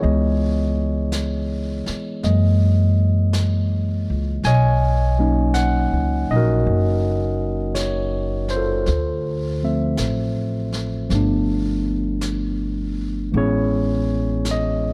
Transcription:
Already playing: E4 G#4 C#5
0.01 C#2 E3 G#3 B3 D#5, brush sweep
1.12 brush sweep, snare, hi-hat pedal
1.86 muted upright bass stroke, snare
2.23 F#2 E3 G#3 A#3 D#5, brush sweep, snare
3.33 brush sweep, snare, hi-hat pedal
4.10 C#2
4.43 B1 C#5 D#5 G#5, brush sweep, snare
5.19 F#3 A#3 C#4 D#4
5.54 F#5, brush sweep, snare, hi-hat pedal
5.93 C#2
6.30 A#1 D#4 D#5
6.36 F#4 A#4
6.64 F#1, brush sweep
7.75 C#5, brush sweep, snare, hi-hat pedal
8.48 C5, snare
8.55 F4 A4
8.86 D2, brush sweep, snare
9.63 F3 A3 C4 E5
9.97 A1, brush sweep, snare, hi-hat pedal
10.72 snare
11.09 G1 F3 A3 B3, brush sweep, snare
11.15 D4
12.21 brush sweep, snare, hi-hat pedal
13.32 A1 E3 G#3 B3, brush sweep
13.36 C#4 E4 G#4 C#5
14.45 brush sweep, snare, hi-hat pedal
14.51 D#5

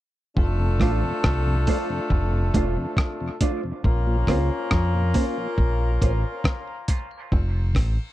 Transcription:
0.37 F1 A3 D4 F4 A4, kick
0.60 F2 C3
0.80 A1 A3 D4 F4 C5, kick, cross-stick, open hi-hat
1.03 F2 C3
1.24 C2, kick, cross-stick
1.46 F2 C3
1.67 A3 D4 F4 C5, kick, open hi-hat
1.90 F2 C3
2.10 F1, kick
2.33 F2 C3
2.54 E1 A3 D4 F4 C5, kick, closed hi-hat
2.77 F2 C3
2.97 kick, cross-stick
3.21 F2 C3
3.41 A3 D4 F4 C5, kick, closed hi-hat
3.63 F2 C3
3.84 A#1 A#3 C#4 F4 A#4, kick
4.07 A#2 F3
4.27 C#2 A#3 C4 C#4 F4 C5, kick, cross-stick, open hi-hat
4.71 F2, kick, cross-stick
4.94 A#2 F3
5.14 A#3 C4 C#4 F4 C5, kick, open hi-hat
5.37 A#2 F3
5.58 A#1, kick
5.81 A#2 F3
6.02 A1 A#3 C4 C#4 F4 C5, kick, closed hi-hat
6.44 kick, cross-stick
6.68 A#2 F3
6.88 A#3 C4 C#4 F4 C5, kick, closed hi-hat
7.11 C4 C#4
7.32 F1 C4 F4 A4 C5, kick
7.54 F2 C3
7.75 A1, kick, cross-stick, open hi-hat
7.98 F2 C3

